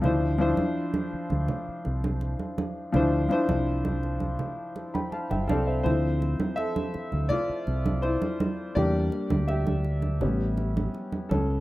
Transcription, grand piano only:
<<
  \new Staff \with { instrumentName = "Grand piano" } { \time 4/4 \key d \dorian \tempo 4 = 82 << { <f d' e' c''>8 <f d' e' c''>4 r2 r8 | <f d' e' c''>8 <f d' e' c''>4 r4 r16 <g'' b''>16 <f'' a''>16 <e'' g''>16 <d'' f''>16 <c'' e''>16~ | <c'' e''>16 r2. r8. | r1 | } \\ { r1 | r2. r8 <c' a'>8 | c''4 <a' e''>4 <f' d''>4 <e' c''>4 | <g' d''>4 <g' e''>2 r8 <cis' a'>8 | } >> }
  \new Staff \with { instrumentName = "Grand piano" } { \time 4/4 \key d \dorian r1 | r1 | <f c' e'>8 r2. r8 | <g bes d'>4. r8 <g b cis'>2 | }
>>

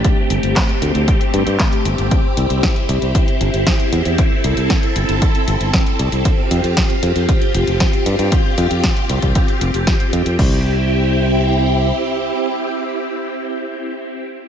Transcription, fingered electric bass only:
\new Staff \with { instrumentName = "Fingered electric bass" } { \clef bass \time 4/4 \key c \major \tempo 4 = 116 r8 g,,16 g,,16 r8 d,16 d,16 r8 g,16 g,16 r8 g,,16 g,,16 | r8 c,16 c,16 r8 c,16 c,16 r8 g,,16 g,,16 r8 e,16 e,16 | r8 c,16 c,16 r8 g,,16 g,,16 r8 g,,16 g,,16 r8 c,16 c,16 | r8 f,16 f,16 r8 f,16 f,16 r8 f,,16 f,,16 r8 g,16 g,16 |
r8 f,16 f,16 r8 c,16 c,16 r8 f,,16 f,,16 r8 f,16 f,16 | c,2. r4 | r1 | }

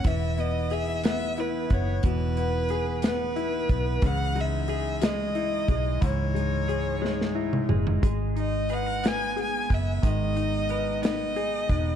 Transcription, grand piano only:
\new Staff \with { instrumentName = "Grand piano" } { \time 6/8 \key gis \minor \tempo 4. = 60 e8 b8 gis'8 b8 e'8 b8 | b,8 b8 gis'8 b8 e'8 b8 | cis8 gis8 gis'8 gis8 e'8 gis8 | gis,8 gis8 gis'8 gis8 e'8 gis8 |
gis8 dis'8 b'8 b8 gis'4 | dis8 dis'8 b'8 dis'8 gis'8 dis'8 | }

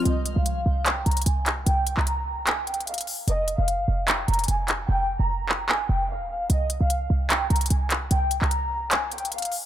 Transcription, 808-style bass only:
\new Staff \with { instrumentName = "808-style bass" } { \clef bass \time 4/4 \key c \phrygian \tempo 4 = 149 c,8. c,8. c,4 c,8 c,4 | c,8. c,2. r16 | f,,8. f,,8 g,,16 f,,4 f,,8 f,,4 | f,,8. f,,4~ f,,16 aes,,8 f,,8. ees,,8. |
c,8. c,8. c,4 c,8 c,4 | c,8. c,2. r16 | }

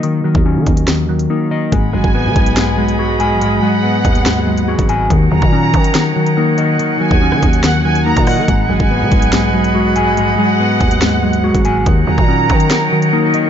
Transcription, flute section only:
\new Staff \with { instrumentName = "Flute section" } { \time 4/4 \key aes \dorian \tempo 4 = 142 r1 | <aes' ees'' ges'' ces'''>1~ | <aes' ees'' ges'' ces'''>1 | <ees' bes' des'' ges''>1~ |
<ees' bes' des'' ges''>1 | <aes' ees'' ces'''>1~ | <aes' ees'' ces'''>1 | <ees' bes' des''>1 | }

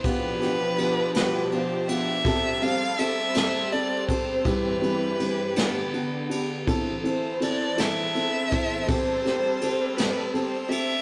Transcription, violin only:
\new Staff \with { instrumentName = "Violin" } { \time 6/8 \key c \major \tempo 4. = 54 b'4. b'8 c''8 e''8~ | e''8 f''8 e''4 d''8 c''8 | b'2~ b'8 r8 | r8 c''8 d''8 e''4. |
c''4. b'8 c''8 e''8 | }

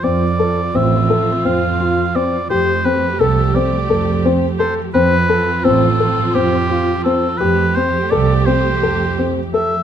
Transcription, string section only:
\new Staff \with { instrumentName = "String section" } { \time 7/8 \key f \lydian \tempo 4 = 85 << { <c' f'>2.~ <c' f'>8 | <a g'>2.~ <a g'>8 | <c' f'>2.~ <c' f'>8 | <a g'>2.~ <a g'>8 | } \\ { f2.~ f8~ | f2.~ f8~ | f2.~ f8~ | f2.~ f8 | } >> }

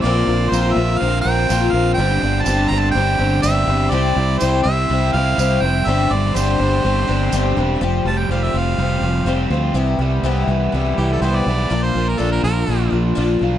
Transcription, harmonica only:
\new Staff \with { instrumentName = "Harmonica" } { \time 4/4 \key g \dorian \tempo 4 = 124 d''4 c''8 e''8 f''8 g''4 f''8 | g''4 a''8 bes''16 a''16 g''4 e''4 | d''4 c''8 e''4 f''4 g''8 | e''8 d''8 c''2~ c''8 r8 |
\key f \lydian r8 a''16 g''16 f''16 e''16 f''2 r8 | r2 r8 g'16 a'16 c''16 d''8.~ | d''16 c''8 bes'16 a'16 bes'16 bes'4 r4. | }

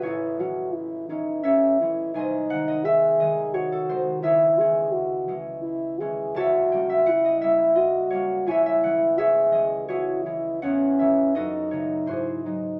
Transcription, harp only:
<<
  \new Staff \with { instrumentName = "Harp" } { \time 3/4 \key cis \minor \tempo 4 = 85 << { <b' cis'' e''>2 e''4 | gis''8 fis''16 dis''16 e''8 dis''8 cis''16 a'16 bis'8 | e''2. | a''8 g''16 e''16 fis''16 dis''16 e''8 dis''8 cis''8 |
gis''16 e''16 fis''8 e''8 dis''8 cis''4 | fis''8 e''8 dis''8 cis''8 bis'4 | } \\ { <e' gis' a'>2 <a' cis''>4 | <bis' dis''>2. | <gis' cis''>2. | <cis'' e''>2. |
<cis'' e''>4 <gis' cis''>4 <e' gis'>4 | cis''4 <fis' a'>4 <fis' gis'>4 | } >> }
  \new Staff \with { instrumentName = "Harp" } { \clef bass \time 3/4 \key cis \minor <a,, gis cis'>8 <e gis cis'>4 <e gis cis'>4 <e gis cis'>8 | bis,,8 <dis gis dis'>4 <dis gis dis'>4 <dis gis dis'>8 | cis,8 <e gis cis'>4 <e gis cis'>4 <e gis cis'>8 | cis,8 <g ais cis'>4 <g ais cis'>4 <g ais cis'>8 |
cis,8 <e gis cis'>4 <e gis cis'>4 <e gis cis'>8 | e,8 <e gis cis'>8 fis,8 <cis a dis'>8 gis,8 <fis gis dis'>8 | }
>>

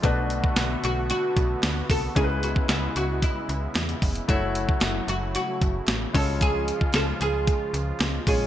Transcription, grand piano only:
<<
  \new Staff \with { instrumentName = "Grand piano" } { \time 4/4 \key cis \phrygian \tempo 4 = 113 <a d' fis' b'>1 | <gis cis' e' ais' b'>1 | <a e' fis' cis''>2.~ <a e' fis' cis''>8 <gis cis' eis' cis''>8~ | <gis cis' eis' cis''>2.~ <gis cis' eis' cis''>8 <gis cis' eis' cis''>8 | }
  \new Staff \with { instrumentName = "Grand piano" } { \clef bass \time 4/4 \key cis \phrygian b,4. r2 r8 | cis4. r2 r8 | r2. r8 cis8~ | cis4 r2. | }
>>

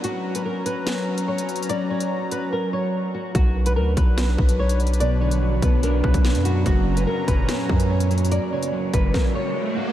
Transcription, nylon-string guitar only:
\new Staff \with { instrumentName = "Nylon-string guitar" } { \time 4/4 \key fis \phrygian \tempo 4 = 145 fis'8. b'16 ais'8 b'4. cis''8 r8 | d''8 cis''4 b'8 ais'8 cis''4 fis'8 | fis'8. b'16 ais'8 b'4. cis''8 r8 | d''8 cis''4 b'8 ais'8 b'4 fis'8 |
fis'8. b'16 ais'8 b'4. cis''8 r8 | d''8 cis''4 b'8 ais'8 cis''4 fis'8 | }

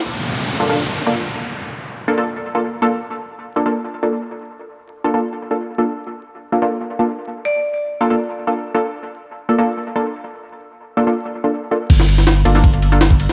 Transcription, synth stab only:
\new Staff \with { instrumentName = "Synth stab" } { \time 4/4 \key bes \major \tempo 4 = 162 r4. <bes d' f' a'>16 <bes d' f' a'>16 r8. <bes d' f' a'>16 r4 | r4. <bes d' f' a'>16 <bes d' f' a'>16 r8. <bes d' f' a'>16 r8 <bes d' f' a'>16 r16 | r4. <bes d' f' a'>16 <bes d' f' a'>16 r8. <bes d' f' a'>16 r4 | r4. <bes d' f' a'>16 <bes d' f' a'>16 r8. <bes d' f' a'>16 r8 <bes d' f' a'>16 r16 |
r4. <bes d' f' a'>16 <bes d' f' a'>16 r8. <bes d' f' a'>16 r4 | r4. <bes d' f' a'>16 <bes d' f' a'>16 r8. <bes d' f' a'>16 r8 <bes d' f' a'>16 r16 | r4. <bes d' f' a'>16 <bes d' f' a'>16 r8. <bes d' f' a'>16 r4 | r4. <bes d' f' a'>16 <bes d' f' a'>16 r8. <bes d' f' a'>16 r8 <bes d' f' a'>16 r16 |
r4. <bes d' f' a'>16 <bes d' f' a'>16 r8. <bes d' f' a'>16 r4 | }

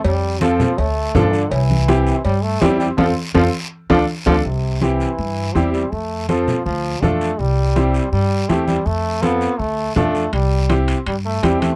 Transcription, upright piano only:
\new Staff \with { instrumentName = "Upright piano" } { \time 4/4 \key c \major \tempo 4 = 163 r4 <c' f' a'>8 r4. <d' f' a'>8 r8 | r4 <c' e' g'>8 r4. <c' e' g'>8 r8 | <c' f' a'>8 r8 <c' f' a'>8 r4 <d' f' a'>8 r8 <d' f' a'>8 | r4 <c' e' g'>8 r4. <c' e' g'>8 r8 |
r4 <c' f' a'>8 r4. <d' f' a'>8 r8 | r4 <c' e' g'>8 r4. <c' e' g'>8 r8 | r4 <c' f' a'>8 r4. <d' f' a'>8 r8 | r4 <c' e' g'>8 r4. <c' e' g'>8 r8 | }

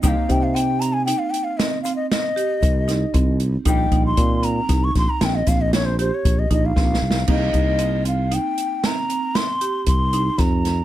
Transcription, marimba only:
\new Staff \with { instrumentName = "Marimba" } { \time 7/4 \key c \minor \tempo 4 = 116 ees'8 ees'8 c'8 c'8 ees'4 c'8 c'4 g'4 ees'8 c'4 | ees'8 ees'8 c'8 c'8 ees'4 c'8 c'4 g'4 ees'8 c'4 | ees'8 ees'8 c'8 c'8 ees'4 c'8 c'4 g'4 ees'8 c'4 | }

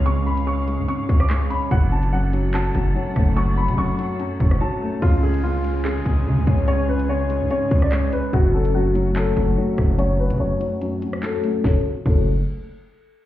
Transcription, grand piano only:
\new Staff \with { instrumentName = "Grand piano" } { \time 4/4 \key fis \minor \tempo 4 = 145 cis'''8 b''8 cis'''4 cis'''8. d'''16 cis'''8 b''8 | fis''8 a''8 fis''4 a''2 | cis'''8 b''8 cis'''2 a''4 | eis'8 gis'8 eis'4 gis'2 |
cis''8 b'8 cis''4 cis''8. d''16 cis''8 b'8 | fis'8 a'8 fis'4 a'2 | cis''8 b'8 cis''2 a'4 | a'8 r8 a'8 r2 r8 | }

